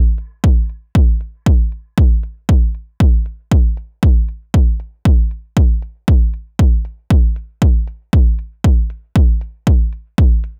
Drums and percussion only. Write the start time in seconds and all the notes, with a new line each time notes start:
0.18 closed hi-hat
0.44 kick
0.69 closed hi-hat
0.95 kick
1.21 closed hi-hat
1.46 kick
1.72 closed hi-hat
1.98 kick
2.23 closed hi-hat
2.49 kick
2.75 closed hi-hat
3.00 kick
3.26 closed hi-hat
3.52 kick
3.77 closed hi-hat
4.03 kick
4.28 closed hi-hat
4.54 kick
4.80 closed hi-hat
5.05 kick
5.31 closed hi-hat
5.57 kick
5.82 closed hi-hat
6.08 kick
6.34 closed hi-hat
6.59 kick
6.85 closed hi-hat
7.11 kick
7.36 closed hi-hat
7.62 kick
7.87 closed hi-hat
8.13 kick
8.39 closed hi-hat
8.64 kick
8.90 closed hi-hat
9.16 kick
9.41 closed hi-hat
9.67 kick
9.93 closed hi-hat
10.18 kick
10.44 closed hi-hat